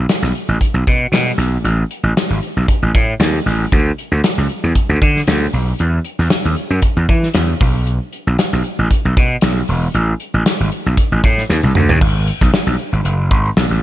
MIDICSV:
0, 0, Header, 1, 3, 480
1, 0, Start_track
1, 0, Tempo, 518135
1, 1528, Time_signature, 4, 2, 24, 8
1, 12807, End_track
2, 0, Start_track
2, 0, Title_t, "Slap bass"
2, 0, Program_c, 0, 36
2, 207, Note_on_c, 0, 35, 79
2, 288, Note_off_c, 0, 35, 0
2, 449, Note_on_c, 0, 33, 78
2, 529, Note_off_c, 0, 33, 0
2, 685, Note_on_c, 0, 35, 80
2, 767, Note_off_c, 0, 35, 0
2, 808, Note_on_c, 0, 47, 88
2, 977, Note_off_c, 0, 47, 0
2, 1036, Note_on_c, 0, 47, 79
2, 1210, Note_off_c, 0, 47, 0
2, 1275, Note_on_c, 0, 35, 79
2, 1449, Note_off_c, 0, 35, 0
2, 1521, Note_on_c, 0, 33, 91
2, 1693, Note_off_c, 0, 33, 0
2, 1884, Note_on_c, 0, 33, 76
2, 1967, Note_off_c, 0, 33, 0
2, 2132, Note_on_c, 0, 32, 73
2, 2212, Note_off_c, 0, 32, 0
2, 2377, Note_on_c, 0, 35, 85
2, 2456, Note_off_c, 0, 35, 0
2, 2616, Note_on_c, 0, 33, 73
2, 2695, Note_off_c, 0, 33, 0
2, 2730, Note_on_c, 0, 45, 82
2, 2900, Note_off_c, 0, 45, 0
2, 2960, Note_on_c, 0, 39, 77
2, 3133, Note_off_c, 0, 39, 0
2, 3204, Note_on_c, 0, 33, 70
2, 3376, Note_off_c, 0, 33, 0
2, 3451, Note_on_c, 0, 38, 91
2, 3620, Note_off_c, 0, 38, 0
2, 3813, Note_on_c, 0, 38, 81
2, 3893, Note_off_c, 0, 38, 0
2, 4055, Note_on_c, 0, 37, 79
2, 4135, Note_off_c, 0, 37, 0
2, 4294, Note_on_c, 0, 40, 78
2, 4374, Note_off_c, 0, 40, 0
2, 4532, Note_on_c, 0, 38, 83
2, 4613, Note_off_c, 0, 38, 0
2, 4652, Note_on_c, 0, 50, 91
2, 4821, Note_off_c, 0, 50, 0
2, 4885, Note_on_c, 0, 38, 80
2, 5057, Note_off_c, 0, 38, 0
2, 5125, Note_on_c, 0, 35, 79
2, 5297, Note_off_c, 0, 35, 0
2, 5371, Note_on_c, 0, 40, 88
2, 5541, Note_off_c, 0, 40, 0
2, 5733, Note_on_c, 0, 40, 86
2, 5814, Note_off_c, 0, 40, 0
2, 5976, Note_on_c, 0, 39, 85
2, 6056, Note_off_c, 0, 39, 0
2, 6210, Note_on_c, 0, 42, 80
2, 6292, Note_off_c, 0, 42, 0
2, 6453, Note_on_c, 0, 40, 89
2, 6534, Note_off_c, 0, 40, 0
2, 6567, Note_on_c, 0, 52, 81
2, 6739, Note_off_c, 0, 52, 0
2, 6801, Note_on_c, 0, 40, 73
2, 6975, Note_off_c, 0, 40, 0
2, 7050, Note_on_c, 0, 35, 84
2, 7391, Note_off_c, 0, 35, 0
2, 7661, Note_on_c, 0, 35, 80
2, 7740, Note_off_c, 0, 35, 0
2, 7901, Note_on_c, 0, 35, 81
2, 7980, Note_off_c, 0, 35, 0
2, 8140, Note_on_c, 0, 33, 83
2, 8219, Note_off_c, 0, 33, 0
2, 8384, Note_on_c, 0, 35, 80
2, 8462, Note_off_c, 0, 35, 0
2, 8498, Note_on_c, 0, 47, 81
2, 8666, Note_off_c, 0, 47, 0
2, 8734, Note_on_c, 0, 35, 83
2, 8904, Note_off_c, 0, 35, 0
2, 8972, Note_on_c, 0, 28, 74
2, 9143, Note_off_c, 0, 28, 0
2, 9211, Note_on_c, 0, 33, 96
2, 9381, Note_off_c, 0, 33, 0
2, 9578, Note_on_c, 0, 33, 83
2, 9658, Note_off_c, 0, 33, 0
2, 9822, Note_on_c, 0, 32, 85
2, 9900, Note_off_c, 0, 32, 0
2, 10062, Note_on_c, 0, 35, 83
2, 10140, Note_off_c, 0, 35, 0
2, 10300, Note_on_c, 0, 33, 78
2, 10379, Note_off_c, 0, 33, 0
2, 10413, Note_on_c, 0, 45, 90
2, 10582, Note_off_c, 0, 45, 0
2, 10651, Note_on_c, 0, 39, 89
2, 10743, Note_off_c, 0, 39, 0
2, 10778, Note_on_c, 0, 36, 88
2, 10857, Note_off_c, 0, 36, 0
2, 10896, Note_on_c, 0, 38, 78
2, 11021, Note_off_c, 0, 38, 0
2, 11021, Note_on_c, 0, 39, 69
2, 11099, Note_off_c, 0, 39, 0
2, 11128, Note_on_c, 0, 32, 97
2, 11390, Note_off_c, 0, 32, 0
2, 11500, Note_on_c, 0, 35, 73
2, 11578, Note_off_c, 0, 35, 0
2, 11734, Note_on_c, 0, 35, 83
2, 11814, Note_off_c, 0, 35, 0
2, 11973, Note_on_c, 0, 32, 79
2, 12053, Note_off_c, 0, 32, 0
2, 12088, Note_on_c, 0, 30, 81
2, 12330, Note_off_c, 0, 30, 0
2, 12330, Note_on_c, 0, 32, 80
2, 12499, Note_off_c, 0, 32, 0
2, 12570, Note_on_c, 0, 35, 91
2, 12661, Note_off_c, 0, 35, 0
2, 12693, Note_on_c, 0, 33, 83
2, 12772, Note_off_c, 0, 33, 0
2, 12807, End_track
3, 0, Start_track
3, 0, Title_t, "Drums"
3, 85, Note_on_c, 9, 42, 102
3, 87, Note_on_c, 9, 38, 111
3, 178, Note_off_c, 9, 42, 0
3, 180, Note_off_c, 9, 38, 0
3, 224, Note_on_c, 9, 38, 35
3, 317, Note_off_c, 9, 38, 0
3, 324, Note_on_c, 9, 42, 66
3, 417, Note_off_c, 9, 42, 0
3, 564, Note_on_c, 9, 36, 73
3, 568, Note_on_c, 9, 42, 87
3, 656, Note_off_c, 9, 36, 0
3, 661, Note_off_c, 9, 42, 0
3, 808, Note_on_c, 9, 36, 82
3, 813, Note_on_c, 9, 42, 66
3, 901, Note_off_c, 9, 36, 0
3, 905, Note_off_c, 9, 42, 0
3, 1044, Note_on_c, 9, 42, 91
3, 1053, Note_on_c, 9, 38, 102
3, 1137, Note_off_c, 9, 42, 0
3, 1145, Note_off_c, 9, 38, 0
3, 1288, Note_on_c, 9, 42, 72
3, 1297, Note_on_c, 9, 38, 28
3, 1381, Note_off_c, 9, 42, 0
3, 1390, Note_off_c, 9, 38, 0
3, 1529, Note_on_c, 9, 42, 75
3, 1622, Note_off_c, 9, 42, 0
3, 1767, Note_on_c, 9, 42, 75
3, 1860, Note_off_c, 9, 42, 0
3, 2010, Note_on_c, 9, 42, 101
3, 2012, Note_on_c, 9, 38, 113
3, 2102, Note_off_c, 9, 42, 0
3, 2105, Note_off_c, 9, 38, 0
3, 2246, Note_on_c, 9, 42, 62
3, 2339, Note_off_c, 9, 42, 0
3, 2486, Note_on_c, 9, 36, 76
3, 2487, Note_on_c, 9, 42, 91
3, 2579, Note_off_c, 9, 36, 0
3, 2580, Note_off_c, 9, 42, 0
3, 2730, Note_on_c, 9, 36, 85
3, 2735, Note_on_c, 9, 42, 66
3, 2823, Note_off_c, 9, 36, 0
3, 2827, Note_off_c, 9, 42, 0
3, 2963, Note_on_c, 9, 42, 94
3, 2972, Note_on_c, 9, 38, 104
3, 3056, Note_off_c, 9, 42, 0
3, 3064, Note_off_c, 9, 38, 0
3, 3212, Note_on_c, 9, 46, 69
3, 3220, Note_on_c, 9, 38, 32
3, 3305, Note_off_c, 9, 46, 0
3, 3313, Note_off_c, 9, 38, 0
3, 3448, Note_on_c, 9, 36, 96
3, 3451, Note_on_c, 9, 42, 77
3, 3541, Note_off_c, 9, 36, 0
3, 3544, Note_off_c, 9, 42, 0
3, 3691, Note_on_c, 9, 42, 77
3, 3784, Note_off_c, 9, 42, 0
3, 3927, Note_on_c, 9, 42, 96
3, 3929, Note_on_c, 9, 38, 110
3, 4019, Note_off_c, 9, 42, 0
3, 4022, Note_off_c, 9, 38, 0
3, 4062, Note_on_c, 9, 38, 33
3, 4154, Note_off_c, 9, 38, 0
3, 4162, Note_on_c, 9, 42, 61
3, 4255, Note_off_c, 9, 42, 0
3, 4404, Note_on_c, 9, 36, 75
3, 4407, Note_on_c, 9, 42, 84
3, 4497, Note_off_c, 9, 36, 0
3, 4500, Note_off_c, 9, 42, 0
3, 4648, Note_on_c, 9, 36, 81
3, 4648, Note_on_c, 9, 42, 67
3, 4741, Note_off_c, 9, 36, 0
3, 4741, Note_off_c, 9, 42, 0
3, 4783, Note_on_c, 9, 38, 30
3, 4876, Note_off_c, 9, 38, 0
3, 4883, Note_on_c, 9, 42, 87
3, 4892, Note_on_c, 9, 38, 102
3, 4976, Note_off_c, 9, 42, 0
3, 4985, Note_off_c, 9, 38, 0
3, 5120, Note_on_c, 9, 46, 68
3, 5213, Note_off_c, 9, 46, 0
3, 5362, Note_on_c, 9, 42, 78
3, 5455, Note_off_c, 9, 42, 0
3, 5601, Note_on_c, 9, 42, 75
3, 5694, Note_off_c, 9, 42, 0
3, 5737, Note_on_c, 9, 38, 30
3, 5829, Note_off_c, 9, 38, 0
3, 5838, Note_on_c, 9, 42, 93
3, 5840, Note_on_c, 9, 38, 107
3, 5930, Note_off_c, 9, 42, 0
3, 5933, Note_off_c, 9, 38, 0
3, 6080, Note_on_c, 9, 42, 65
3, 6173, Note_off_c, 9, 42, 0
3, 6317, Note_on_c, 9, 42, 87
3, 6322, Note_on_c, 9, 36, 71
3, 6409, Note_off_c, 9, 42, 0
3, 6415, Note_off_c, 9, 36, 0
3, 6566, Note_on_c, 9, 42, 68
3, 6568, Note_on_c, 9, 36, 84
3, 6659, Note_off_c, 9, 42, 0
3, 6660, Note_off_c, 9, 36, 0
3, 6699, Note_on_c, 9, 38, 31
3, 6792, Note_off_c, 9, 38, 0
3, 6796, Note_on_c, 9, 42, 89
3, 6805, Note_on_c, 9, 38, 100
3, 6889, Note_off_c, 9, 42, 0
3, 6898, Note_off_c, 9, 38, 0
3, 7043, Note_on_c, 9, 46, 71
3, 7048, Note_on_c, 9, 36, 89
3, 7136, Note_off_c, 9, 46, 0
3, 7141, Note_off_c, 9, 36, 0
3, 7290, Note_on_c, 9, 42, 75
3, 7383, Note_off_c, 9, 42, 0
3, 7527, Note_on_c, 9, 42, 69
3, 7620, Note_off_c, 9, 42, 0
3, 7770, Note_on_c, 9, 42, 102
3, 7772, Note_on_c, 9, 38, 111
3, 7862, Note_off_c, 9, 42, 0
3, 7865, Note_off_c, 9, 38, 0
3, 8004, Note_on_c, 9, 42, 62
3, 8096, Note_off_c, 9, 42, 0
3, 8250, Note_on_c, 9, 36, 75
3, 8252, Note_on_c, 9, 42, 84
3, 8343, Note_off_c, 9, 36, 0
3, 8344, Note_off_c, 9, 42, 0
3, 8493, Note_on_c, 9, 42, 68
3, 8495, Note_on_c, 9, 36, 88
3, 8586, Note_off_c, 9, 42, 0
3, 8587, Note_off_c, 9, 36, 0
3, 8721, Note_on_c, 9, 42, 93
3, 8729, Note_on_c, 9, 38, 109
3, 8813, Note_off_c, 9, 42, 0
3, 8822, Note_off_c, 9, 38, 0
3, 8964, Note_on_c, 9, 46, 67
3, 9057, Note_off_c, 9, 46, 0
3, 9209, Note_on_c, 9, 42, 75
3, 9302, Note_off_c, 9, 42, 0
3, 9448, Note_on_c, 9, 42, 77
3, 9541, Note_off_c, 9, 42, 0
3, 9688, Note_on_c, 9, 42, 102
3, 9691, Note_on_c, 9, 38, 105
3, 9781, Note_off_c, 9, 42, 0
3, 9784, Note_off_c, 9, 38, 0
3, 9929, Note_on_c, 9, 42, 63
3, 10022, Note_off_c, 9, 42, 0
3, 10166, Note_on_c, 9, 36, 75
3, 10169, Note_on_c, 9, 42, 89
3, 10259, Note_off_c, 9, 36, 0
3, 10262, Note_off_c, 9, 42, 0
3, 10411, Note_on_c, 9, 36, 89
3, 10411, Note_on_c, 9, 42, 62
3, 10503, Note_off_c, 9, 36, 0
3, 10504, Note_off_c, 9, 42, 0
3, 10542, Note_on_c, 9, 38, 32
3, 10635, Note_off_c, 9, 38, 0
3, 10650, Note_on_c, 9, 38, 51
3, 10742, Note_off_c, 9, 38, 0
3, 10777, Note_on_c, 9, 48, 48
3, 10869, Note_off_c, 9, 48, 0
3, 10887, Note_on_c, 9, 45, 80
3, 10979, Note_off_c, 9, 45, 0
3, 11017, Note_on_c, 9, 43, 79
3, 11110, Note_off_c, 9, 43, 0
3, 11127, Note_on_c, 9, 49, 80
3, 11129, Note_on_c, 9, 36, 109
3, 11219, Note_off_c, 9, 49, 0
3, 11221, Note_off_c, 9, 36, 0
3, 11368, Note_on_c, 9, 42, 76
3, 11461, Note_off_c, 9, 42, 0
3, 11500, Note_on_c, 9, 36, 87
3, 11502, Note_on_c, 9, 42, 50
3, 11506, Note_on_c, 9, 38, 30
3, 11593, Note_off_c, 9, 36, 0
3, 11595, Note_off_c, 9, 42, 0
3, 11599, Note_off_c, 9, 38, 0
3, 11614, Note_on_c, 9, 38, 109
3, 11707, Note_off_c, 9, 38, 0
3, 11744, Note_on_c, 9, 42, 35
3, 11837, Note_off_c, 9, 42, 0
3, 11849, Note_on_c, 9, 42, 66
3, 11941, Note_off_c, 9, 42, 0
3, 11980, Note_on_c, 9, 42, 43
3, 12073, Note_off_c, 9, 42, 0
3, 12090, Note_on_c, 9, 42, 89
3, 12182, Note_off_c, 9, 42, 0
3, 12331, Note_on_c, 9, 36, 91
3, 12332, Note_on_c, 9, 42, 64
3, 12424, Note_off_c, 9, 36, 0
3, 12425, Note_off_c, 9, 42, 0
3, 12463, Note_on_c, 9, 42, 36
3, 12556, Note_off_c, 9, 42, 0
3, 12570, Note_on_c, 9, 38, 104
3, 12663, Note_off_c, 9, 38, 0
3, 12807, End_track
0, 0, End_of_file